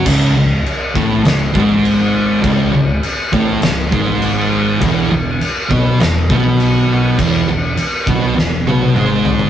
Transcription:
<<
  \new Staff \with { instrumentName = "Distorted electric guitar" } { \clef bass \time 4/4 \key cis \minor \tempo 4 = 101 <cis, cis>8 cis,8 r8 <a, a>8 cis,8 <gis, gis>4. | <cis, cis>8 cis,8 r8 <a, a>8 cis,8 <gis, gis>4. | <e, e>8 e,8 r8 <b, b>8 e,8 <b, b>4. | <e, e>8 e,8 r8 <b, b>8 e,8 <b, b>8 <gis, gis>4 | }
  \new Staff \with { instrumentName = "Distorted electric guitar" } { \clef bass \time 4/4 \key cis \minor <cis, cis>8 cis,8 r8 <a, a>8 cis,8 <gis, gis>4. | <cis, cis>8 cis,8 r8 <a, a>8 cis,8 <gis, gis>4. | <e, e>8 e,8 r8 <b, b>8 e,8 <b, b>4. | <e, e>8 e,8 r8 <b, b>8 e,8 <b, b>8 <gis, gis>4 | }
  \new Staff \with { instrumentName = "Fingered electric bass" } { \clef bass \time 4/4 \key cis \minor cis,,8 cis,,8 r8 a,,8 cis,,8 gis,,4. | cis,,8 cis,,8 r8 a,,8 cis,,8 gis,,4. | e,,8 e,,8 r8 b,,8 e,,8 b,,4. | e,,8 e,,8 r8 b,,8 e,,8 b,,8 gis,,4 | }
  \new DrumStaff \with { instrumentName = "Drums" } \drummode { \time 4/4 <cymc bd>4 cymc8 bd8 <cymc sn>8 bd8 cymc4 | <cymc bd>4 cymc8 bd8 <cymc sn>8 bd8 cymc4 | <cymc bd>4 cymc8 bd8 <cymc sn>8 bd8 cymc4 | <cymc bd>4 cymc8 bd8 sn8 tommh16 tommh16 toml8 tomfh16 tomfh16 | }
>>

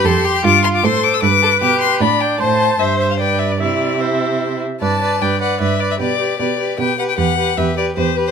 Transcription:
<<
  \new Staff \with { instrumentName = "Violin" } { \time 3/4 \key c \major \tempo 4 = 152 c'''4 d'''8 c'''16 d'''16 c'''8 d'''16 e'''16 | d'''4 d'''8 c'''8 b''8 g''8 | a''4 e''8 e''16 f''16 g''8 e''16 d''16 | d''4 c''4. r8 |
\key g \major a''4 g''8 fis''8 e''8 d''16 e''16 | d''4 d''4 g''8 fis''16 g''16 | fis''4 e''8 d''8 c''8 b'16 c''16 | }
  \new Staff \with { instrumentName = "Violin" } { \time 3/4 \key c \major a'8 g'8 f'4 c''4 | b'8 a'8 g'4 d'4 | c''4 c''4 b'4 | e'4 e'4. r8 |
\key g \major d''8 d''8 d''8 d''8 d''8 d''8 | b'8 b'8 b'8 b'8 b'8 b'8 | b'8 b'8 b'8 b'8 b'8 b'8 | }
  \new Staff \with { instrumentName = "Viola" } { \time 3/4 \key c \major g'4 f'4 a'4 | b'2 d''4 | c''4 c''4 d''4 | e''2~ e''8 r8 |
\key g \major b'8 b'8 b'8 b'8 b'8 b'8 | g'8 g'8 g'8 g'8 g'8 g'8 | g'8 g'8 g'8 g'8 g'8 g'8 | }
  \new Staff \with { instrumentName = "Cello" } { \clef bass \time 3/4 \key c \major f,4 g,4 a,4 | g,4 b,4 a,4 | a,4 g,2 | c2~ c8 r8 |
\key g \major g,4 g,4 g,4 | b,4 b,4 b,4 | e,4 e,4 e,4 | }
>>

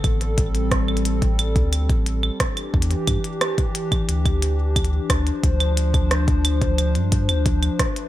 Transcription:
<<
  \new Staff \with { instrumentName = "Analog synth pad" } { \time 4/4 \key d \dorian \tempo 4 = 89 << { <g a'>2.~ <g a'>8 <e g'>8~ | <e g'>2.~ <e g'>8 <f c''>8~ | <f c''>2.~ <f c''>8 <a b'>8 | } \\ { c'2.~ c'8 d'8~ | d'1~ | d'1 | } >> }
  \new Staff \with { instrumentName = "Sub bass" } { \clef bass \time 4/4 \key d \dorian a,,2~ a,,16 d,8 a,,8 r8. | e,16 r16 g,16 r4 r16 d,4~ d,16 r16 d,16 r16 | d,2~ d,16 g,8 d,8 r8. | }
  \new DrumStaff \with { instrumentName = "Drums" } \drummode { \time 4/4 <cl hh bd>16 hh16 <hh bd>16 hh16 <hh bd ss>16 cl32 hh32 hh16 <hh bd>16 <cl hh>16 <hh bd>16 <cl hh>16 <hh bd>16 hh16 cl16 <hh bd ss>16 <cl hh>16 | bd32 hh32 hh16 <cl hh bd>16 hh16 <cl hh ss>16 <hh bd>16 hh16 <cl hh bd>16 hh16 <cl hh bd>16 hh8 <cl hh bd>32 hh16. <cl hh bd ss>16 hh16 | <hh bd>16 <cl hh>16 hh16 <cl hh bd>16 <hh ss>16 <hh bd>16 <cl hh>16 <hh bd>16 <cl hh>16 hh16 <hh bd>16 <cl hh>16 <hh bd>16 <cl hh>16 <hh bd ss>16 hh16 | }
>>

